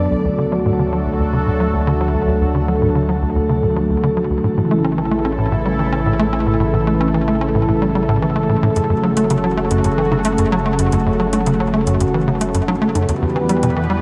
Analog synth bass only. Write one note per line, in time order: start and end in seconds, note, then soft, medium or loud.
0.11 0.16 D2 medium
0.25 0.29 D2 medium
0.38 0.45 D3 medium
0.52 0.59 F#3 medium
0.66 0.73 A2 medium
0.79 0.90 D3 medium
0.93 1.00 F#3 medium
1.06 1.17 D2 medium
1.20 1.24 D2 medium
1.33 1.44 C#3 medium
1.47 1.51 A2 medium
1.60 1.67 F#3 medium
1.74 1.81 D2 medium
1.87 1.94 D3 loud
2.01 2.08 F#3 medium
2.14 2.25 D2 medium
2.28 2.32 D2 medium
2.41 2.45 D2 medium
2.55 2.62 D3 medium
2.68 2.75 F#3 medium
2.82 2.89 A2 medium
2.95 3.06 D3 medium
3.09 3.16 F#3 medium
3.22 3.33 D2 medium
3.36 3.40 D2 medium
3.49 3.60 C#3 medium
3.63 3.67 A2 medium
3.76 3.83 F#3 medium
3.90 3.97 D2 medium
4.03 4.10 D3 loud
4.17 4.24 F#3 medium
4.30 4.41 D2 medium
4.44 4.48 A2 medium
4.57 4.62 A2 medium
4.71 4.78 A3 medium
4.84 4.91 C#4 medium
4.98 5.05 E3 medium
5.11 5.22 A3 medium
5.25 5.32 C#4 medium
5.38 5.49 A2 medium
5.52 5.56 A2 medium
5.65 5.76 G3 medium
5.79 5.83 E3 medium
5.92 6.00 C#4 medium
6.06 6.13 A2 medium
6.19 6.26 A3 loud
6.33 6.40 C#4 medium
6.46 6.57 A2 medium
6.60 6.64 A2 medium
6.73 6.78 A2 medium
6.87 6.94 A3 medium
7.01 7.08 C#4 medium
7.14 7.21 E3 medium
7.28 7.38 A3 medium
7.41 7.48 C#4 medium
7.55 7.65 A2 medium
7.68 7.72 A2 medium
7.82 7.92 G3 medium
7.95 8.02 G3 medium
8.09 8.19 A2 loud
8.22 8.26 E3 medium
8.36 8.43 A3 medium
8.49 8.56 A2 medium
8.63 8.70 A2 loud
8.76 8.80 F#2 medium
8.90 8.94 F#2 medium
9.03 9.10 F#3 medium
9.17 9.24 A3 medium
9.30 9.37 C#3 medium
9.44 9.54 F#3 medium
9.57 9.64 A3 medium
9.71 9.81 F#2 medium
9.84 9.89 F#2 medium
9.98 10.08 E3 medium
10.11 10.16 C#3 medium
10.25 10.32 A3 medium
10.39 10.46 F#2 medium
10.52 10.59 F#3 loud
10.66 10.73 A3 medium
10.79 10.90 F#2 medium
10.93 10.97 F#2 medium
11.06 11.10 F#2 medium
11.20 11.27 F#3 medium
11.33 11.40 A3 medium
11.47 11.54 C#3 medium
11.60 11.71 F#3 medium
11.74 11.81 A3 medium
11.87 11.98 F#2 medium
12.01 12.05 F#2 medium
12.14 12.25 E3 medium
12.28 12.32 C#3 medium
12.41 12.48 A3 medium
12.54 12.62 F#2 medium
12.68 12.75 F#3 loud
12.82 12.89 A3 medium
12.95 13.06 F#2 medium
13.09 13.13 E2 medium
13.22 13.26 E2 medium
13.36 13.43 E3 medium
13.49 13.56 G3 medium
13.63 13.70 B2 medium
13.76 13.87 E3 medium
13.90 13.97 G3 medium